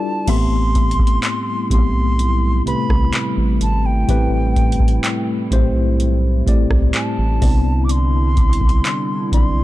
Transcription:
0.00 0.29 G3 medium
0.00 0.30 D4 medium
0.00 0.29 E4 medium
0.00 0.29 F4 medium
0.00 0.29 A4 medium
0.00 0.29 B4 medium
0.00 0.29 D5 medium
0.00 0.31 A5 medium
0.27 1.19 A1 loud
0.27 1.62 A2 medium
0.27 7.38 G3 medium
0.27 7.38 A3 medium
0.27 1.62 A3 medium
0.27 1.63 B3 loud
0.27 1.62 C4 medium
0.27 7.38 E4 loud
0.27 1.63 G4 medium
0.27 2.19 E5 medium
0.27 1.71 C6 loud
0.27 kick loud
0.27 closed hi-hat medium
0.27 crash medium
0.75 kick medium
0.75 closed hi-hat medium
0.91 closed hi-hat medium
0.99 kick medium
1.07 closed hi-hat medium
1.23 clap loud
1.23 closed hi-hat medium
1.70 2.62 B1 medium
1.70 2.60 A2 medium
1.70 2.60 A3 medium
1.70 2.61 B3 medium
1.70 2.61 C4 medium
1.70 2.61 G4 medium
1.70 2.63 C6 loud
1.70 kick medium
1.70 closed hi-hat medium
2.19 closed hi-hat medium
2.66 2.76 C2 soft
2.66 4.00 C3 medium
2.66 4.00 A3 medium
2.66 4.01 C4 medium
2.66 4.01 G4 medium
2.66 4.01 B4 medium
2.66 3.31 B5 loud
2.66 closed hi-hat medium
2.89 3.11 C2 medium
2.89 kick medium
2.89 cross-stick medium
3.13 clap loud
3.13 closed hi-hat medium
3.37 3.59 A1 medium
3.61 4.05 G#1 medium
3.61 3.87 A5 medium
3.61 closed hi-hat medium
3.86 5.28 G5 medium
4.08 5.00 A1 loud
4.08 5.43 A2 loud
4.08 5.43 A3 medium
4.08 5.43 C4 medium
4.08 5.43 G4 medium
4.08 5.44 B4 loud
4.08 kick loud
4.08 closed hi-hat medium
4.56 kick medium
4.56 closed hi-hat medium
4.72 closed hi-hat medium
4.80 kick medium
4.88 closed hi-hat medium
5.04 clap loud
5.04 closed hi-hat medium
5.51 6.43 B1 medium
5.51 6.41 A2 medium
5.51 6.41 A3 medium
5.51 6.41 C4 medium
5.51 6.42 G4 medium
5.51 6.42 C5 medium
5.51 kick medium
5.51 closed hi-hat medium
6.00 closed hi-hat medium
6.46 6.56 C2 medium
6.46 7.36 A2 medium
6.46 7.36 A3 medium
6.46 7.37 C4 medium
6.46 7.37 G4 medium
6.46 7.37 D5 medium
6.46 kick loud
6.46 closed hi-hat medium
6.70 6.92 C2 medium
6.70 kick medium
6.70 cross-stick medium
6.94 7.86 A5 medium
6.94 clap loud
6.94 closed hi-hat medium
7.18 7.40 A1 medium
7.41 8.81 C2 loud
7.41 9.21 C3 medium
7.41 9.64 D3 medium
7.41 9.64 G3 medium
7.41 9.22 B3 medium
7.41 9.21 C4 medium
7.41 9.64 D4 medium
7.41 9.21 D4 medium
7.41 9.64 E4 medium
7.41 9.22 E4 medium
7.41 9.33 D5 medium
7.41 kick loud
7.41 open hi-hat medium
7.84 7.93 D6 medium
7.89 9.33 C6 loud
7.89 closed hi-hat medium
8.37 kick medium
8.37 closed hi-hat medium
8.53 closed hi-hat medium
8.61 kick medium
8.69 closed hi-hat medium
8.85 clap loud
8.85 closed hi-hat medium
9.32 9.64 B1 loud
9.32 9.64 D3 medium
9.32 9.64 C4 medium
9.32 9.64 D4 medium
9.32 9.64 E4 medium
9.32 9.64 D5 medium
9.32 9.64 C6 loud
9.32 kick medium
9.32 closed hi-hat medium

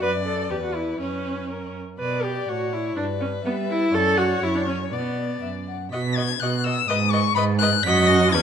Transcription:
0.01 0.51 F#2 medium
0.01 0.10 B4 loud
0.01 0.99 D5 medium
0.01 0.52 D5 medium
0.25 0.49 A4 medium
0.50 0.99 E2 medium
0.50 0.55 G4 medium
0.50 1.00 B4 medium
0.63 0.76 F#4 medium
0.74 1.00 E4 medium
1.00 1.78 F#2 medium
1.00 1.73 C#4 medium
1.00 1.52 B4 medium
1.00 1.73 C#5 soft
1.51 1.80 A#4 soft
1.99 2.45 B2 medium
1.99 2.25 B4 medium
1.99 2.50 D5 medium
1.99 2.93 D5 medium
2.23 2.50 G4 medium
2.48 2.96 A2 medium
2.48 2.74 F#4 medium
2.48 2.98 C#5 medium
2.73 2.96 E4 medium
2.96 3.44 G2 medium
2.96 3.04 D4 medium
2.96 3.92 B4 medium
2.96 3.43 D5 medium
3.21 3.29 C#4 medium
3.44 3.92 G3 medium
3.44 3.53 B3 medium
3.44 3.93 E5 medium
3.70 3.95 E4 loud
3.91 4.41 F#2 medium
3.91 4.19 A4 loud
3.91 4.94 C#5 medium
3.91 4.42 D5 medium
4.17 4.44 F#4 loud
4.41 4.94 F#2 medium
4.41 4.57 E4 medium
4.41 4.90 C#5 medium
4.55 4.66 D4 medium
4.67 4.75 C#4 medium
4.91 5.42 B2 medium
4.91 5.41 B3 medium
4.91 5.36 D5 medium
4.91 5.73 D5 medium
5.41 5.92 F#2 medium
5.41 5.49 E5 medium
5.67 5.91 F#5 medium
5.91 6.36 B2 loud
5.91 6.01 F#4 medium
5.91 6.00 D#5 medium
5.91 6.17 B6 medium
6.16 6.25 F#4 medium
6.16 6.25 D#5 medium
6.16 6.41 G#6 loud
6.40 6.84 B2 medium
6.40 6.50 F#4 medium
6.40 6.50 D#5 medium
6.40 6.66 F#6 loud
6.64 6.73 F#4 medium
6.64 6.74 D#5 medium
6.64 6.89 E6 loud
6.88 7.32 G#2 loud
6.88 6.97 B4 medium
6.88 6.98 D#5 medium
6.88 7.13 D#6 loud
7.12 7.20 B4 medium
7.12 7.21 D#5 medium
7.12 7.35 C#6 loud
7.36 7.80 G#2 loud
7.36 7.44 B4 medium
7.36 7.45 D#5 medium
7.36 7.44 B5 loud
7.59 7.69 B4 medium
7.59 7.70 D#5 medium
7.59 7.85 F#6 loud
7.83 8.35 F#2 loud
7.83 8.35 F#4 loud
7.83 8.35 D#5 loud
7.83 8.09 B6 loud
8.08 8.34 A#6 loud
8.32 8.42 E2 loud
8.32 8.42 C#4 loud
8.32 8.42 B4 loud
8.32 8.42 G#6 loud

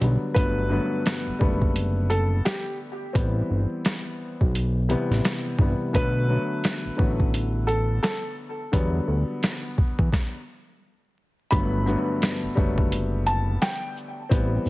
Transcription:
0.01 0.17 B1 loud
0.01 0.34 D3 medium
0.01 0.34 F#3 medium
0.01 0.34 G3 medium
0.01 0.35 B3 medium
0.01 closed hi-hat medium
0.34 0.80 G1 loud
0.34 0.68 G2 medium
0.34 0.68 D3 medium
0.34 0.69 F#3 medium
0.34 0.69 A3 medium
0.34 0.69 B3 loud
0.34 2.06 B4 loud
0.34 kick loud
0.34 closed hi-hat medium
0.69 1.35 G2 medium
0.69 1.36 D3 medium
0.69 1.36 F#3 medium
0.69 1.36 A3 medium
0.69 1.36 B3 loud
1.06 snare loud
1.06 closed hi-hat medium
1.27 1.32 F#1 soft
1.39 2.41 F#1 medium
1.39 3.03 D3 medium
1.39 3.03 G3 medium
1.39 3.04 A3 medium
1.39 3.04 B3 loud
1.39 kick medium
1.62 kick medium
1.76 closed hi-hat medium
2.10 2.41 A4 medium
2.10 closed hi-hat medium
2.45 2.77 G4 medium
2.45 snare loud
2.45 closed hi-hat medium
3.13 3.42 A1 loud
3.13 4.78 E3 medium
3.13 4.78 G3 medium
3.13 4.78 B3 loud
3.13 4.77 C4 medium
3.13 kick loud
3.13 closed hi-hat medium
3.50 3.66 G1 medium
3.85 snare loud
3.85 closed hi-hat medium
4.41 4.96 B1 medium
4.41 kick medium
4.55 closed hi-hat medium
4.89 5.54 C3 medium
4.89 5.55 E3 medium
4.89 5.55 G3 medium
4.89 5.55 B3 loud
4.89 closed hi-hat medium
5.11 5.21 A1 medium
5.11 snare soft
5.25 snare loud
5.25 closed hi-hat medium
5.59 5.75 G1 medium
5.59 5.92 C3 medium
5.59 5.92 E3 medium
5.59 5.92 G3 medium
5.59 5.93 B3 medium
5.59 kick medium
5.93 6.38 B1 loud
5.93 6.26 D3 medium
5.93 6.26 F#3 medium
5.93 6.27 A3 medium
5.93 6.27 B3 medium
5.93 7.65 B4 loud
5.93 kick loud
5.93 closed hi-hat medium
6.28 6.94 D3 medium
6.28 6.94 F#3 medium
6.28 6.94 A3 medium
6.28 6.95 B3 loud
6.64 snare loud
6.64 closed hi-hat medium
6.85 6.90 A1 soft
6.96 7.99 A1 medium
6.96 8.61 D3 medium
6.96 8.61 F#3 medium
6.96 8.61 A3 medium
6.96 8.62 B3 medium
6.96 kick medium
7.20 kick medium
7.34 closed hi-hat medium
7.67 7.99 A4 medium
7.67 closed hi-hat medium
8.03 8.34 A4 medium
8.03 snare loud
8.03 closed hi-hat medium
8.72 9.00 E2 loud
8.72 10.36 D3 medium
8.72 10.36 F#3 medium
8.72 10.36 G3 medium
8.72 10.37 B3 loud
8.72 kick loud
8.72 closed hi-hat medium
9.08 9.24 D2 medium
9.43 snare loud
9.43 closed hi-hat medium
9.78 kick medium
9.99 10.10 E2 medium
9.99 kick medium
10.12 kick loud
10.12 snare medium
11.51 11.96 G1 loud
11.51 11.84 G2 medium
11.51 11.85 D3 medium
11.51 11.85 F#3 medium
11.51 11.85 A3 medium
11.51 11.85 B3 loud
11.51 13.22 B5 loud
11.51 kick loud
11.51 closed hi-hat medium
11.86 12.52 G2 loud
11.86 12.52 D3 medium
11.86 12.52 F#3 medium
11.86 12.53 A3 medium
11.86 12.53 B3 loud
11.86 shaker medium
12.22 snare loud
12.22 closed hi-hat medium
12.43 12.49 F#1 soft
12.55 13.58 F#1 loud
12.55 14.20 D3 medium
12.55 14.20 F#3 medium
12.55 14.19 G3 loud
12.55 14.20 A3 medium
12.55 14.20 B3 loud
12.55 kick medium
12.55 shaker medium
12.78 kick medium
12.92 closed hi-hat medium
13.26 13.58 A5 medium
13.26 closed hi-hat medium
13.26 shaker medium
13.62 13.93 G5 medium
13.62 snare loud
13.62 closed hi-hat medium
13.97 shaker medium
14.29 14.59 A1 loud
14.29 14.70 E3 medium
14.29 14.70 G3 medium
14.29 14.70 B3 loud
14.29 14.70 C4 medium
14.29 kick loud
14.29 closed hi-hat medium
14.66 14.70 G1 medium
14.66 shaker medium

